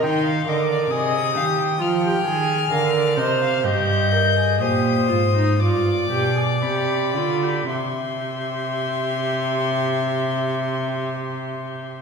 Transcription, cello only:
X:1
M:4/4
L:1/8
Q:1/4=60
K:Cm
V:1 name="Cello" clef=bass
E, D, C, E, F, E, D, C, | G,,2 B,, A,, G,, =B,, C, D, | C,8 |]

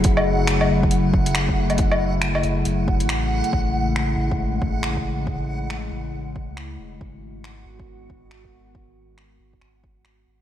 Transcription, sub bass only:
X:1
M:4/4
L:1/16
Q:"Swing 16ths" 1/4=138
K:F#dor
V:1 name="Sub bass" clef=bass
F,,,6 F,,,4 F,,,6- | F,,,6 F,,,2 F,,,3 A,,,4 z | A,,,6 A,,,4 A,,,6- | A,,,6 A,,,2 A,,,3 C,,3 E,,,2 |
G,,,6 G,,,4 G,,,6- | G,,,6 G,,,2 G,,,4 G,,,2 G,,,2 |]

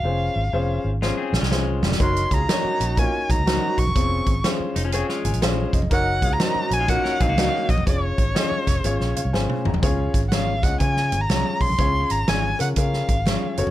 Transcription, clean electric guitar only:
X:1
M:4/4
L:1/16
Q:"Swing" 1/4=123
K:Db
V:1 name="Clean electric guitar"
z8 [A,F] [CA]2 [A,F]4- [A,F] | z16 | z6 E [F,D] [CA] [A,F]6 z | z6 z [A,F] [B,G] [DB] [CA] [B,G]4- [B,G] |
z16 | z16 | z16 |]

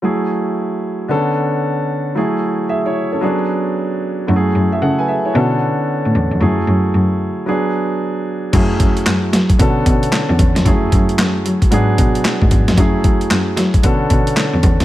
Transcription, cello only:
X:1
M:4/4
L:1/16
Q:"Swing 16ths" 1/4=113
K:F#m
V:1 name="Cello" clef=bass
z16 | z16 | F,,2 F,, z C,2 z2 B,,2 z3 A,, E,, ^E,, | F,,2 F,, z F,,2 z8 z2 |
F,,2 F,, z F,, z F, z B,,2 B,,2 z E,, E,, ^E,, | F,,2 F,, z F,, z F, z G,,2 B,,2 z G,, E,, ^E,, | F,,2 F,, z F,, z F, z B,,2 B,,2 z E,, E,, ^E,, |]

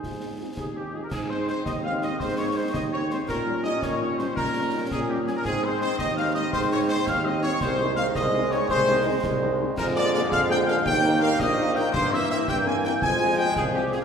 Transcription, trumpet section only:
X:1
M:6/8
L:1/16
Q:3/8=111
K:Ab
V:1 name="Trumpet section"
A6 A2 G2 A B | A2 c2 c2 e2 f2 e2 | c2 d2 c2 e2 d2 c2 | B4 e2 d4 c2 |
B6 A2 G2 A B | A2 c2 c2 e2 f2 e2 | c2 d2 c2 f2 e2 d2 | c4 f2 e4 d2 |
c6 z6 | B2 =d2 d2 f2 g2 f2 | g4 f2 e4 g2 | c2 =e2 e2 g2 a2 g2 |
a4 g2 A2 G2 A z |]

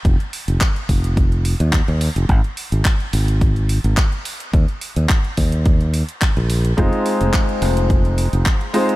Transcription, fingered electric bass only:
X:1
M:4/4
L:1/16
Q:"Swing 16ths" 1/4=107
K:Ebmix
V:1 name="Fingered electric bass" clef=bass
F,,, z2 F,,, z2 F,,,4- F,,, E,, z E,, z F,,, | A,,, z2 A,,, z2 A,,,4- A,,, A,,, z4 | E,, z2 E,, z2 E,,4- E,, z2 B,,,3 | F,,, z2 F,,, z2 F,,,4- F,,, F,,, z4 |]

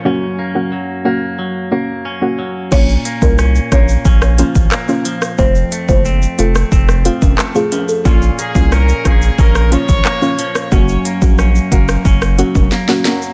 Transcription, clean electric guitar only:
X:1
M:4/4
L:1/8
Q:1/4=90
K:Bbm
V:1 name="Clean electric guitar"
[G,,D] B, G, B, G, B, D G, | [B,,D] B, D B, D F, B, F, | [F,,C] =A, C A, C F, A, F, | [B,,D] B, D B, D F, B, F, |
[G,,D] B, D B, D G, B, G, |]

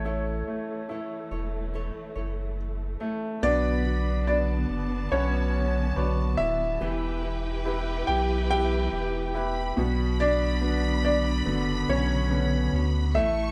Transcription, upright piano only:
X:1
M:4/4
L:1/8
Q:1/4=71
K:Bm
V:1 name="Upright piano"
[A,E] A, E4 z A, | B,2 [Bd]2 [Bcf]2 [Bcd]2 | E,2 [EGB]2 [EGB]2 [EGB] B,,- | B,, [B,D]2 [D,B,]2 [D,B,C]2 A, |]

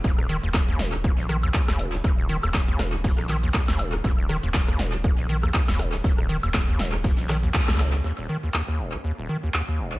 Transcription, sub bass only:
X:1
M:4/4
L:1/16
Q:"Swing 16ths" 1/4=120
K:Cphr
V:1 name="Sub bass" clef=bass
E,,,3 E,,,3 E,,,3 B,,,3 z E,,,3 | E,,,3 E,,,3 E,,,3 B,,,3 z E,,,3 | E,,,3 E,,,3 E,,,3 B,,,3 z E,,,3 | E,,,3 E,,,3 E,,,3 B,,,3 z D,,3 |
z16 |]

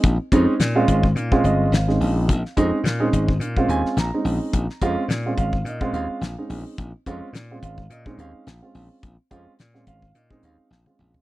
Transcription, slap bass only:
X:1
M:4/4
L:1/16
Q:"Swing 16ths" 1/4=107
K:Bbm
V:1 name="Slap bass" clef=bass
B,,, z F,, z B,,2 A,,,2 B,,2 =G,,,2 A,,,2 B,,,2 | B,,, z F,, z B,,2 A,,,2 B,,2 E,, z B,,, z B,,, z | B,,, z F,, z B,,2 A,,,2 B,,2 E,, z B,,, z B,,, z | B,,, z F,, z B,,2 A,,,2 B,,2 E,, z B,,, z B,,, z |
B,,, z F,, z B,,2 A,,,2 B,,2 E,, z B,,, z B,,, z |]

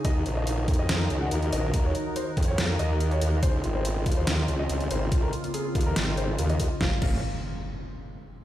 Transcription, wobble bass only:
X:1
M:4/4
L:1/8
Q:1/4=142
K:Fphr
V:1 name="Wobble bass" clef=bass
E,, B,,,2 F,, F,, D,, E,, B,,, | E,, z2 F,, F,, E,,2 E,, | D,, A,,,2 E,, E,, D,, D,, A,,, | D,, z2 E,, A,,,2 E,, E,, |
F,,, F,,, z6 |]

